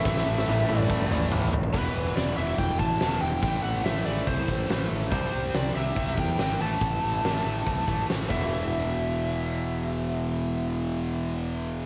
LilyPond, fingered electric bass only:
\new Staff \with { instrumentName = "Fingered electric bass" } { \clef bass \time 4/4 \key e \minor \tempo 4 = 142 a,,8 a,,8 a,,8 a,,8 a,,8 a,,8 a,,8 a,,8 | e,,8 e,,8 e,,8 e,,8 e,,8 a,,8 e,,8 e,,8 | a,,8 a,,8 a,,8 a,,8 c,8 a,,8 a,,8 a,,8 | c,8 c,8 c,8 c,8 c,8 e,8 gis,,8 a,,8 |
a,,8 a,,8 a,,8 a,,8 c,8 a,,8 a,,8 e,,8~ | e,,1~ | e,,1 | }